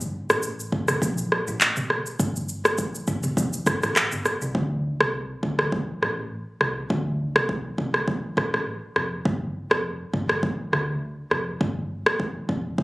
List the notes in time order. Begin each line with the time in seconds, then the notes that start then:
Already playing: G1
0.01 shaker
0.30 A1, cross-stick, shaker
0.43 shaker
0.60 shaker
0.72 G1, kick
0.88 cross-stick, mid tom, shaker
1.02 A#1, kick, shaker
1.18 shaker
1.32 cross-stick
1.48 A1, shaker
1.61 clap, shaker
1.77 mid tom, shaker
1.90 cross-stick
2.06 shaker
2.20 G1, kick, shaker
2.36 shaker
2.49 shaker
2.65 cross-stick, shaker
2.78 kick, shaker
2.95 shaker
3.07 G1, kick, shaker
3.23 mid tom, shaker
3.37 F1, kick, shaker
3.53 shaker
3.66 G1, kick, cross-stick, shaker
3.83 A1, cross-stick, shaker
3.96 cross-stick, clap, shaker
4.12 G1, shaker
4.25 cross-stick, shaker
4.42 C2, shaker
4.55 D2, kick
5.00 C2, cross-stick
5.43 D2, kick
5.59 cross-stick
5.72 kick
6.02 A1, cross-stick
6.61 C2, cross-stick
6.90 D2, kick
7.36 C2, cross-stick
7.49 kick
7.78 C2, kick
7.94 cross-stick
8.08 kick
8.37 A1, kick, cross-stick
8.54 cross-stick
8.96 F1, cross-stick
9.25 G1, kick
9.71 F1, cross-stick
10.14 G1, kick
10.29 cross-stick
10.43 kick
10.73 D2, cross-stick
11.31 F1, cross-stick
11.61 G1, kick
12.06 F1, cross-stick
12.20 kick
12.49 F1, kick
12.78 kick